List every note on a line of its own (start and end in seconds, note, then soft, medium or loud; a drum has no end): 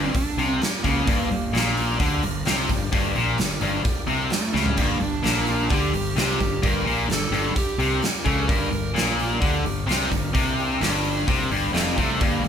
0.00 0.13 G1 medium
0.00 0.14 G2 loud
0.00 0.12 G3 medium
0.00 0.13 A#3 medium
0.00 0.13 D4 medium
0.00 0.15 D4 medium
0.00 0.13 G4 medium
0.14 0.35 G3 medium
0.14 0.35 A#3 medium
0.14 0.35 D4 medium
0.14 0.58 D4 medium
0.14 0.36 A4 medium
0.14 muted fingered electric bass stroke soft
0.14 muted overdriven electric guitar stroke medium
0.14 kick loud
0.14 open hi-hat medium
0.36 0.59 C2 medium
0.36 0.60 C3 loud
0.36 0.58 G3 medium
0.36 0.59 A#3 medium
0.36 0.59 D4 medium
0.36 0.59 F4 medium
0.36 open hi-hat soft
0.60 0.81 G3 medium
0.60 0.81 A#3 medium
0.60 0.81 D4 medium
0.60 0.82 G4 medium
0.60 muted fingered electric bass stroke soft
0.60 muted overdriven electric guitar stroke medium
0.60 snare loud
0.60 open hi-hat medium
0.83 1.05 C#2 medium
0.83 1.06 C#3 medium
0.83 1.05 G3 medium
0.83 1.05 A#3 loud
0.83 1.05 A#3 medium
0.83 1.05 D4 medium
0.83 1.05 G4 medium
0.83 kick medium
0.83 open hi-hat medium
1.06 1.29 G1 medium
1.06 1.29 G2 loud
1.06 1.28 G3 medium
1.06 1.72 A#3 loud
1.06 1.29 A#3 medium
1.06 kick loud
1.06 open hi-hat medium
1.10 1.29 D4 medium
1.10 1.29 A4 loud
1.30 1.52 G1 medium
1.30 1.49 G2 medium
1.30 1.51 G3 medium
1.30 1.51 A#3 medium
1.30 1.52 D4 medium
1.30 1.52 G4 medium
1.30 open hi-hat medium
1.53 1.96 A#1 medium
1.53 1.99 A#2 loud
1.53 1.75 G3 medium
1.53 1.75 A#3 medium
1.53 1.75 D4 medium
1.53 1.76 G4 medium
1.53 snare loud
1.53 open hi-hat medium
1.77 1.97 G3 medium
1.77 1.97 A#3 medium
1.77 1.98 D4 medium
1.77 1.98 G4 medium
1.77 open hi-hat medium
2.00 2.21 D2 medium
2.00 2.22 D3 loud
2.00 2.21 G3 loud
2.00 2.21 A#3 loud
2.00 2.21 D4 medium
2.00 2.22 G4 loud
2.00 kick loud
2.00 open hi-hat medium
2.23 2.44 G1 medium
2.23 2.41 G2 medium
2.23 2.43 G3 medium
2.23 2.43 A#3 medium
2.23 2.44 D4 medium
2.23 2.44 A#4 loud
2.23 open hi-hat medium
2.45 2.67 C2 medium
2.45 2.68 C3 loud
2.45 2.67 G3 medium
2.45 2.66 A#3 medium
2.45 2.67 D4 medium
2.45 2.67 G4 medium
2.45 snare loud
2.45 open hi-hat medium
2.68 2.90 G1 medium
2.68 2.87 G2 medium
2.68 2.89 G3 medium
2.68 2.90 A#3 medium
2.68 2.90 D4 medium
2.68 2.90 G4 loud
2.68 kick medium
2.68 open hi-hat medium
2.91 3.14 G1 medium
2.91 3.14 G2 loud
2.91 3.12 G3 loud
2.91 3.13 A#3 medium
2.91 3.13 D4 medium
2.91 3.13 G4 loud
2.91 kick loud
2.91 open hi-hat medium
3.15 3.37 A#1 medium
3.15 3.37 A#2 medium
3.15 3.34 G3 medium
3.15 3.34 A#3 medium
3.15 3.34 D4 medium
3.15 3.36 G4 loud
3.15 open hi-hat medium
3.35 3.57 G2 medium
3.35 3.57 G3 medium
3.35 3.58 A#3 medium
3.35 3.58 D4 medium
3.35 3.58 G4 medium
3.35 open hi-hat medium
3.39 3.60 G1 medium
3.39 snare loud
3.60 3.83 G1 loud
3.60 3.83 G2 loud
3.60 3.81 G3 medium
3.60 3.81 A#3 medium
3.60 3.81 D4 medium
3.60 3.82 G4 medium
3.60 open hi-hat medium
3.83 4.04 G3 loud
3.83 4.04 A#3 medium
3.83 4.05 D4 medium
3.83 4.05 G4 loud
3.83 muted overdriven electric guitar stroke medium
3.83 muted fingered electric bass stroke soft
3.83 kick loud
3.83 open hi-hat medium
4.06 4.29 C2 loud
4.06 4.30 C3 medium
4.06 4.27 G3 medium
4.06 4.27 A#3 medium
4.06 4.27 D4 medium
4.06 4.28 G4 medium
4.06 open hi-hat soft
4.29 4.51 G3 medium
4.29 4.79 A3 medium
4.29 4.51 A#3 medium
4.29 4.51 D4 medium
4.29 4.52 A4 medium
4.29 muted fingered electric bass stroke soft
4.29 muted overdriven electric guitar stroke medium
4.29 snare loud
4.29 open hi-hat medium
4.52 4.76 C#2 medium
4.52 4.76 C#3 medium
4.52 4.74 G3 medium
4.52 4.74 A#3 medium
4.52 4.74 D4 medium
4.52 4.75 G4 medium
4.52 snare medium
4.66 floor tom medium
4.75 4.99 G1 medium
4.75 4.99 G2 loud
4.75 4.97 G3 medium
4.75 4.97 A#3 medium
4.75 4.97 D4 medium
4.75 4.98 G4 loud
4.75 kick loud
4.75 open hi-hat medium
4.75 splash medium
4.79 5.00 A#3 medium
5.00 5.22 G1 medium
5.00 5.19 G2 medium
5.00 5.21 G3 medium
5.00 5.22 A#3 medium
5.00 5.22 D4 medium
5.00 5.49 D4 medium
5.00 5.22 G4 medium
5.00 open hi-hat medium
5.23 5.66 A#1 medium
5.23 5.69 A#2 medium
5.23 5.44 G3 medium
5.23 5.44 A#3 medium
5.23 5.45 D4 medium
5.23 5.45 A4 medium
5.23 snare loud
5.23 open hi-hat medium
5.45 5.67 G3 medium
5.45 5.67 A#3 medium
5.45 5.68 D4 medium
5.45 5.67 G4 medium
5.45 open hi-hat medium
5.51 5.72 D4 medium
5.68 5.92 D2 medium
5.68 5.92 D3 loud
5.68 5.90 G3 medium
5.68 5.90 A#3 medium
5.68 5.90 D4 medium
5.68 5.90 G4 loud
5.68 kick loud
5.68 open hi-hat medium
5.73 6.14 G4 loud
5.91 6.15 G1 medium
5.91 6.11 G2 medium
5.91 6.13 G3 medium
5.91 6.13 A#3 medium
5.91 6.14 D4 medium
5.91 6.14 G4 medium
5.91 open hi-hat medium
6.15 6.37 C2 medium
6.15 6.39 C3 loud
6.15 6.36 G3 medium
6.15 6.37 A#3 medium
6.15 6.37 D4 medium
6.15 6.37 G4 medium
6.15 6.65 G4 medium
6.15 snare loud
6.15 open hi-hat medium
6.39 6.62 G1 medium
6.39 6.58 G2 medium
6.39 6.60 G3 medium
6.39 6.61 A#3 medium
6.39 6.60 D4 medium
6.39 6.61 A#4 medium
6.39 kick medium
6.39 open hi-hat medium
6.62 6.84 G1 medium
6.62 6.85 G2 medium
6.62 6.84 G3 loud
6.62 6.84 A#3 medium
6.62 6.84 D4 medium
6.62 6.84 F4 loud
6.62 7.11 A#4 loud
6.62 kick loud
6.62 open hi-hat medium
6.84 7.07 A#1 medium
6.84 7.08 A#2 loud
6.84 7.07 G3 medium
6.84 7.07 A#3 medium
6.84 7.07 D4 medium
6.84 7.07 G4 medium
6.84 open hi-hat medium
7.07 7.30 G1 medium
7.07 7.27 G2 medium
7.07 7.30 G3 medium
7.07 7.30 A#3 medium
7.07 7.30 D4 medium
7.07 7.30 G4 medium
7.07 open hi-hat medium
7.11 7.58 A4 medium
7.11 snare loud
7.31 7.53 G1 medium
7.31 7.54 G2 loud
7.31 7.52 G3 medium
7.31 7.53 A#3 medium
7.31 7.53 D4 medium
7.31 7.53 G4 medium
7.31 open hi-hat medium
7.55 7.77 G3 medium
7.55 7.77 A#3 medium
7.55 7.77 D4 medium
7.55 7.77 G4 medium
7.55 8.00 G4 medium
7.55 muted overdriven electric guitar stroke soft
7.55 kick loud
7.55 open hi-hat medium
7.78 8.00 C2 medium
7.78 8.01 C3 loud
7.78 8.00 G3 medium
7.78 7.99 A#3 medium
7.78 8.00 D4 medium
7.78 8.00 G4 medium
7.78 open hi-hat medium
8.02 8.23 G3 medium
8.02 8.23 A#3 medium
8.02 8.24 D4 medium
8.02 8.24 G4 medium
8.02 muted fingered electric bass stroke soft
8.02 muted overdriven electric guitar stroke medium
8.02 snare loud
8.02 open hi-hat medium
8.25 8.47 C#2 loud
8.25 8.47 C#3 medium
8.25 8.45 G3 medium
8.25 8.46 A#3 medium
8.25 8.46 D4 medium
8.25 8.47 G4 medium
8.25 8.47 A4 medium
8.25 kick medium
8.25 open hi-hat medium
8.48 8.70 G1 medium
8.48 8.69 G2 medium
8.48 8.69 G3 medium
8.48 8.69 A#3 medium
8.48 8.70 D4 medium
8.48 8.70 G4 loud
8.48 9.14 A#4 loud
8.48 kick loud
8.48 open hi-hat medium
8.71 8.93 G1 medium
8.71 8.90 G2 medium
8.71 8.92 G3 medium
8.71 8.93 A#3 medium
8.71 8.93 D4 medium
8.71 8.94 G4 medium
8.71 open hi-hat soft
8.94 9.38 A#1 medium
8.94 9.40 A#2 loud
8.94 9.16 G3 medium
8.94 9.16 A#3 medium
8.94 9.17 D4 medium
8.94 9.17 A4 medium
8.94 snare loud
8.94 open hi-hat medium
9.18 9.39 G3 medium
9.18 9.39 A#3 medium
9.18 9.40 D4 medium
9.18 9.40 G4 loud
9.18 open hi-hat medium
9.41 9.63 D2 loud
9.41 9.64 D3 medium
9.41 9.62 G3 loud
9.41 9.62 A#3 medium
9.41 9.63 D4 loud
9.41 9.63 G4 loud
9.41 kick loud
9.41 open hi-hat medium
9.63 9.86 G1 medium
9.63 9.83 G2 medium
9.63 9.84 G3 medium
9.63 9.85 A#3 medium
9.63 9.85 D4 medium
9.63 9.85 G4 medium
9.63 open hi-hat medium
9.87 10.10 C2 medium
9.87 10.10 C3 loud
9.87 10.08 G3 medium
9.87 10.08 A#3 medium
9.87 10.09 D4 medium
9.87 10.09 G4 medium
9.87 snare loud
9.87 open hi-hat medium
10.11 10.33 G1 medium
10.11 10.29 G2 medium
10.11 10.32 G3 medium
10.11 10.31 A#3 medium
10.11 10.32 D4 medium
10.11 10.32 A#4 loud
10.11 kick medium
10.11 open hi-hat medium
10.32 10.78 C2 medium
10.32 10.80 C3 medium
10.32 10.54 G3 loud
10.32 10.54 A#3 loud
10.32 10.55 D4 medium
10.32 10.55 G4 loud
10.32 kick loud
10.32 open hi-hat medium
10.58 10.79 G3 medium
10.58 10.79 A#3 medium
10.58 10.79 D4 medium
10.58 10.79 G4 medium
10.58 open hi-hat soft
10.80 11.24 G1 medium
10.80 11.27 G2 loud
10.80 11.01 G3 medium
10.80 11.02 A#3 medium
10.80 11.01 D4 medium
10.80 11.02 G4 medium
10.80 snare loud
10.80 open hi-hat medium
11.03 11.24 G3 medium
11.03 11.25 A#3 medium
11.03 11.25 D4 medium
11.03 11.25 G4 medium
11.03 open hi-hat medium
11.25 11.49 C2 loud
11.25 11.50 C3 loud
11.25 11.47 G3 medium
11.25 11.47 A#3 medium
11.25 11.48 D4 medium
11.25 11.47 G4 loud
11.25 kick loud
11.25 open hi-hat medium
11.50 11.72 G1 loud
11.50 11.73 G2 loud
11.50 11.70 G3 medium
11.50 11.71 A#3 medium
11.50 11.71 D4 medium
11.50 11.71 G4 medium
11.50 open hi-hat medium
11.71 11.95 F1 medium
11.71 11.96 F2 loud
11.71 11.93 G3 medium
11.71 11.81 A3 medium
11.71 11.93 A#3 medium
11.71 11.93 D4 medium
11.71 11.94 G4 medium
11.71 open hi-hat medium
11.76 snare loud
11.94 12.19 C2 medium
11.94 12.19 C3 loud
11.94 12.15 G3 medium
11.94 12.16 A#3 medium
11.94 12.16 D4 medium
11.94 12.17 G4 medium
11.94 kick medium
11.94 open hi-hat medium
12.00 12.22 A3 medium
12.17 12.39 G3 medium
12.17 12.40 A#3 medium
12.17 12.40 D4 medium
12.17 12.40 G4 loud
12.17 open hi-hat medium
12.21 12.42 G1 medium
12.21 12.43 G2 loud
12.21 12.43 A#3 medium
12.21 kick loud
12.41 12.48 G1 medium
12.41 12.48 G2 medium
12.41 12.48 G3 medium
12.41 12.48 A#3 medium
12.41 12.48 D4 medium
12.41 12.48 A4 medium
12.41 open hi-hat soft